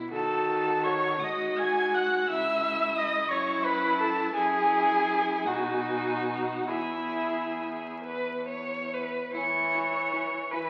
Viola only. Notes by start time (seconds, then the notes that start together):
0.12 A4
0.85 C#5
1.23 D#5
1.58 G#5
1.94 F#5
2.30 E5
2.97 D#5
3.31 C#5
3.64 B4
4.00 A4
4.35 G#4
5.47 F#4
6.68 E4
9.35 E3
10.52 E3